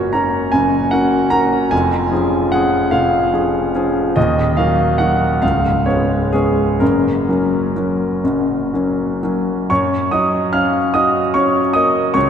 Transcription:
grand piano
Already playing: F#1 F#2 A#3 C#4 F#4 C#5
0.13 A#3 C#4 F#4 A#5
0.52 F#1 F#2 G#5
0.91 A#3 C#4 F#4 F#5
1.30 A#3 C#4 F#4 A#5
1.71 F1 F2 G#5
2.12 F3 C#4 G#4
2.52 F3 C#4 G#4 F#5
2.91 F1 F2 F5
3.32 F3 C#4 G#4
3.75 F3 C#4 G#4
4.16 D#1 D#2 D#5
4.57 F#3 A#3 F#4 F5
4.98 F#3 A#3 F#4 F#5
5.42 C#1 C#2 F5
5.86 G#3 B3 C#4 C#5
6.32 G#3 B3 C#4 G#4
6.80 F#1 F#2 A#4
7.29 F#3 A#3 C#4
7.76 F#3 A#3 C#4
8.24 F#1 F#2
8.74 F#3 A#3 C#4
9.23 F#3 A#3 C#4
9.70 F#2 C#5 C#6
10.11 F#3 D#5 D#6
10.53 C#4 F5 F6
10.94 F#4 D#5 D#6
11.34 C#4 C#5 C#6
11.73 A#3 D#5 D#6
12.14 C#2 C#5 C#6

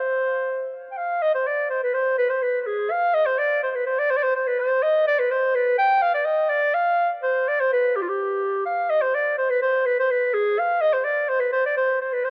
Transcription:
clarinet
Already playing: C5
0.91 G5
0.97 F5
1.22 D#5
1.35 C5
1.47 D5
1.70 C5
1.83 B4
1.94 C5
2.18 B4
2.30 C5
2.42 B4
2.61 B4
2.66 G#4
2.91 F5
3.14 D#5
3.26 C5
3.38 D5
3.63 C5
3.71 C5
3.75 B4
3.86 C5
3.99 D5
4.10 C5
4.17 D5
4.23 C5
4.36 C5
4.47 B4
4.59 C5
4.83 D#5
5.07 D5
5.19 B4
5.31 C5
5.55 B4
5.78 G5
6.02 F5
6.14 D5
6.25 D#5
6.49 D5
6.74 F5
7.23 C5
7.48 D5
7.60 C5
7.72 B4
7.96 G4
8.02 F4
8.09 G4
8.66 F5
8.90 D#5
9.02 C5
9.15 D5
9.38 C5
9.50 B4
9.62 C5
9.86 B4
9.99 C5
10.10 B4
10.34 G#4
10.59 F5
10.81 D#5
10.93 C5
11.04 D5
11.29 C5
11.40 B4
11.52 C5
11.66 D5
11.77 C5
12.01 C5
12.13 B4
12.24 C5

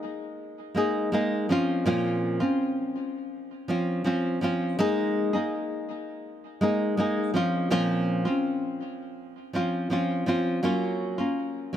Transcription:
nylon-string guitar
Already playing: A#3 D#4 G#4
0.75 G#3 A#3 D#4 G#4
1.12 G#3 A#3 D#4 G#4
1.49 F3 C4 C#4 F4
1.86 A#2 F3 C4 C#4 F4
2.40 C4 C#4 F4
3.68 F3 C4 C#4 F4
4.04 F3 C4 C#4 F4
4.41 F3 C4 C#4 F4
4.79 G#3 A#3 D#4 G#4
5.33 A#3 D#4 G#4
6.61 G#3 A#3 D#4 G#4
6.97 G#3 A#3 D#4 G#4
7.34 F3 C4 C#4 F4
7.70 A#2 F3 C4 C#4 F4
8.25 C4 C#4 F4
9.53 F3 C4 C#4 F4
9.90 F3 C4 C#4 F4
10.26 F3 C4 C#4 F4
10.63 F#3 A#3 C#4 F4
11.18 A#3 C#4 F4
11.73 F#3

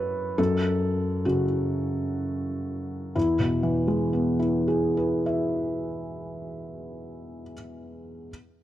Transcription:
felt piano
Already playing: F#2 F#3 B4 C#5
0.38 F#2 A4
1.25 C#3 F#4
3.15 E2 E4
3.39 B2
3.63 E3
3.87 G#3
4.13 B3
4.39 E4
4.68 G#4
4.97 B4
5.26 E5

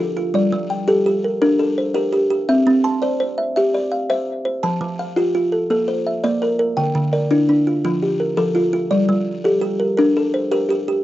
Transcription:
kalimba
Already playing: F3 A4 A#4
0.00 F4
0.17 F4
0.34 G3 D5
0.52 G3
0.70 G5
0.88 G4 A4
1.06 G4
1.24 A#4
1.42 D4 A#4
1.59 A4
1.78 C5
1.94 G4 A#4
2.12 G4
2.30 G4
2.49 C4 E5
2.67 C4
2.84 A5 C6
3.02 C5 D5
3.20 C5
3.38 E5
3.56 G4 E5
3.74 D5
3.92 F5
4.10 C5 E5
4.45 C5
4.63 F3 A5
4.81 F3
4.99 F5
5.16 F4 G4
5.35 F4
5.52 A4
5.70 A#3 A4
5.88 C5
6.07 E5
6.24 A#3 D5
6.42 A#4
6.59 A#4
6.77 D3 G5
6.95 D3
7.13 A#4 D5
7.31 D4 E4
7.49 D4
7.67 F4
7.85 F3 F4
8.02 G4
8.20 A#4
8.37 F3 A4
8.55 F4
8.73 F4
8.91 G3 D5
9.09 G3
9.44 G4 A4
9.61 G4
9.80 A#4
9.97 D4 A#4
10.17 A4
10.34 C5
10.52 G4 A#4
10.69 G4
10.88 G4

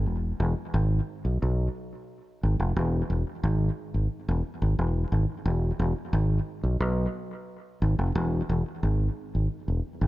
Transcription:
fingered electric bass
0.06 E1
0.40 E1
0.74 G#1
1.25 B1
1.42 B1
2.43 G#1
2.60 F1
2.76 E1
3.10 E1
3.44 G#1
3.94 G#1
4.28 E1
4.62 G#1
4.79 E1
5.12 G#1
5.46 E1
5.79 E1
6.13 G#1
6.63 B1
6.80 B1
7.82 G#1
7.99 F1
8.15 E1
8.49 E1
8.83 G#1
9.35 G#1
9.68 E1
10.01 G#1

